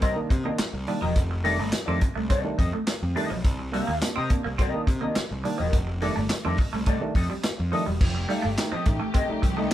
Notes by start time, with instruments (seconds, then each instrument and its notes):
0.01 picked electric bass C2, clean electric guitar C4 G4 A#4 D#5, kick, closed hi-hat
0.16 tine electric piano D#3 A#3 D4
0.29 tine electric piano C3, picked electric bass C3, muted clean electric guitar stroke, kick, closed hi-hat
0.44 tine electric piano D#3 A#3 D4, clean electric guitar A#3 G4 A#4 D#5
0.58 muted clean electric guitar stroke, muted picked electric bass stroke, snare, clap, closed hi-hat
0.73 picked electric bass C2, muted clean electric guitar stroke
0.87 tine electric piano D#3 A#3 D4, clean electric guitar G3, open hi-hat
1.01 picked electric bass E1, clean electric guitar F3 G4 A#4 D#5
1.16 picked electric bass F1, kick, closed hi-hat
1.31 muted clean electric guitar stroke
1.44 tine electric piano D#3 G3 A3 D4, clean electric guitar G3 D#4 A4 D5, open hi-hat
1.59 picked electric bass G1, clean electric guitar A3, tine electric piano A3 D4
1.73 muted clean electric guitar stroke, muted picked electric bass stroke, snare, clap, closed hi-hat
1.86 picked electric bass F2, tine electric piano D#3 G3 A3 D4, clean electric guitar C4 D#4 A4 D5
2.01 muted clean electric guitar stroke, kick, closed hi-hat
2.15 picked electric bass C2, clean electric guitar A3, muted clean electric guitar stroke
2.29 picked electric bass C2, clean electric guitar C4 D#4 A4 D5, kick, closed hi-hat
2.43 tine electric piano D#3 G3 A3 D4, muted clean electric guitar stroke
2.58 picked electric bass F2, clean electric guitar D#4 A4 D#5, muted clean electric guitar stroke, kick, closed hi-hat
2.73 clean electric guitar A3, muted clean electric guitar stroke
2.87 muted clean electric guitar stroke, snare, clap, closed hi-hat
3.03 picked electric bass F2, muted clean electric guitar stroke
3.16 tine electric piano D#3 G3 A3 D4, clean electric guitar G3 D#4 A4 D#5, open hi-hat
3.30 picked electric bass B1, clean electric guitar F3, muted clean electric guitar stroke
3.44 picked electric bass C2, tine electric piano C3, kick, closed hi-hat
3.59 muted clean electric guitar stroke
3.72 clean electric guitar G3 G4 A#4 F5, tine electric piano A#3 D4, open hi-hat
3.87 picked electric bass D#2, clean electric guitar A#3
4.01 tine electric piano A#3 D4, muted clean electric guitar stroke, muted picked electric bass stroke, snare, clap, closed hi-hat
4.15 tine electric piano C3, picked electric bass C3, clean electric guitar C4 G4 A#4 D#5
4.30 tine electric piano A#3 D4, muted clean electric guitar stroke, kick, closed hi-hat
4.44 picked electric bass C2, clean electric guitar A#3, muted clean electric guitar stroke
4.58 picked electric bass C2, clean electric guitar C4 G4 A#4 D#5, kick, closed hi-hat
4.74 tine electric piano D#3 A#3 D4
4.87 picked electric bass C3, tine electric piano C3, muted clean electric guitar stroke, kick, closed hi-hat
5.01 tine electric piano D#3 A#3 D4, clean electric guitar A#3 G4 A#4 D#5
5.15 muted picked electric bass stroke, muted clean electric guitar stroke, snare, clap, closed hi-hat
5.31 picked electric bass C2, muted clean electric guitar stroke
5.44 tine electric piano D#3 A#3 D4, clean electric guitar G3, open hi-hat
5.58 picked electric bass E1, clean electric guitar F3 G4 A#4 D#5
5.73 picked electric bass F1, kick, closed hi-hat
5.87 muted clean electric guitar stroke
6.01 tine electric piano D#3 G3 A3 D4, clean electric guitar G3 D#4 A4 D5, open hi-hat
6.16 picked electric bass G1, clean electric guitar A3, tine electric piano A3 D4
6.30 muted clean electric guitar stroke, muted picked electric bass stroke, snare, clap, closed hi-hat
6.45 picked electric bass F2, tine electric piano D#3 G3 A3 D4, clean electric guitar C4 D#4 A4 D5
6.57 muted clean electric guitar stroke, kick, open hi-hat
6.73 picked electric bass C2, clean electric guitar A3, muted clean electric guitar stroke
6.86 picked electric bass C2, clean electric guitar A3 D#4 A4 D5, kick, closed hi-hat
7.01 tine electric piano D#3 G3 A3 D4, muted clean electric guitar stroke
7.15 picked electric bass F2, clean electric guitar D#4 A4 D#5, muted clean electric guitar stroke, kick, open hi-hat
7.30 clean electric guitar G3, muted clean electric guitar stroke
7.43 muted clean electric guitar stroke, snare, clap, closed hi-hat
7.58 picked electric bass F2, muted clean electric guitar stroke
7.72 tine electric piano D#3 G3 A3 D4, clean electric guitar F3 D#4 A4 D#5, open hi-hat
7.86 picked electric bass E1, clean electric guitar G3, muted clean electric guitar stroke
8.01 picked electric bass F1, string section D#3 A3 G4, tine electric piano F3, kick, crash
8.15 muted clean electric guitar stroke
8.28 clean electric guitar G3 G4 A4 F5, tine electric piano A3 D#4, open hi-hat
8.42 picked electric bass G1, clean electric guitar A3
8.57 tine electric piano A3 D#4, muted clean electric guitar stroke, snare, clap, closed hi-hat
8.72 tine electric piano F3, clean electric guitar C4 G4 A4 D#5, muted picked electric bass stroke
8.85 picked electric bass A1, tine electric piano A3 D#4, muted clean electric guitar stroke, kick, closed hi-hat
9.00 clean electric guitar A3, muted clean electric guitar stroke
9.14 clean electric guitar C4 G4 A4 D#5, kick, closed hi-hat
9.29 tine electric piano G3 A3 D#4, muted picked electric bass stroke
9.43 picked electric bass C2, tine electric piano F3, muted clean electric guitar stroke, kick, closed hi-hat
9.57 tine electric piano G3 A3 D#4, clean electric guitar A3 G4 A4 D#5
9.71 closed hi-hat